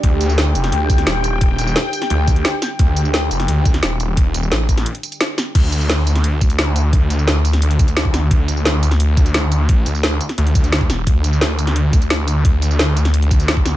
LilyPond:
<<
  \new Staff \with { instrumentName = "Analog synth pad" } { \time 4/4 \key c \dorian \tempo 4 = 174 <d' g' g''>1~ | <d' g' g''>1~ | <d' g' g''>1~ | <d' g' g''>1 |
r1 | r1 | r1 | r1 |
r1 | r1 | }
  \new Staff \with { instrumentName = "Detuned saw bass" } { \clef bass \time 4/4 \key c \dorian d,4. f,,8 d,4 ees,,4~ | ees,,8 ees,,8 r4 d,4 r4 | d,4. f,,8 d,4 ees,,4~ | ees,,8 ees,,8 a,,4 r2 |
d,1 | d,1 | d,1 | a,,8 d,4 r8 d,8 d,4 ees,,8 |
d,1 | d,1 | }
  \new DrumStaff \with { instrumentName = "Drums" } \drummode { \time 4/4 <hh bd>8 <hh tamb>16 tamb16 <hh sn>8 <hh tamb>16 <hh sn>16 hh8 <hh bd tamb>16 <hh sn>16 <hh sn>8 <hh tamb>8 | <hh bd>8 <hh tamb>16 tamb16 <hh sn>8 <hh tamb>16 <hh sn>16 hh8 <hh bd tamb>16 hh16 <hh sn>8 <hh sn tamb>8 | <hh bd>8 <hh tamb>16 tamb16 <hh sn>8 <hh tamb>16 <hh sn>16 hh8 <hh bd tamb>16 <hh sn>16 <hh sn>8 <hh tamb>8 | <hh bd>8 <hh tamb>16 tamb16 <hh sn>8 <hh bd tamb>16 <hh sn>16 hh16 hh16 <hh tamb>16 <hh tamb>16 <hh sn>8 <hh sn tamb>8 |
<cymc hh bd>8 <hh tamb>16 tamb16 <hh sn>8 <hh tamb>16 <hh sn>16 hh8 <hh bd tamb>16 <hh tamb>16 <hh sn>8 <hh tamb>8 | <hh bd>8 <hh tamb>16 tamb16 <hh sn>8 <hh tamb>16 <hh sn>16 hh16 hh16 <hh bd tamb>16 <hh tamb>16 <hh sn>16 bd16 <hh sn tamb>8 | <hh bd>8 <hh tamb>16 tamb16 <hh sn>8 <hh tamb>16 <hh sn>16 hh8 <hh bd tamb>16 <hh tamb>16 <hh sn>8 <hh tamb>8 | <hh bd>8 <hh tamb>16 tamb16 <hh sn>8 <hh tamb>16 <hh sn>16 hh16 hh16 <hh bd tamb>16 <hh tamb>16 <hh sn>16 bd16 <hh sn tamb>8 |
<hh bd>8 <hh tamb>16 tamb16 <hh sn>8 <hh tamb>16 <hh sn>16 hh8 <hh bd tamb>16 <hh tamb>16 <hh sn>8 <hh tamb>8 | <hh bd>8 <hh tamb>16 tamb16 <hh sn>8 <hh tamb>16 <hh sn>16 hh16 hh16 <hh bd tamb>16 <hh tamb>16 <hh sn>16 bd16 <hh sn tamb>8 | }
>>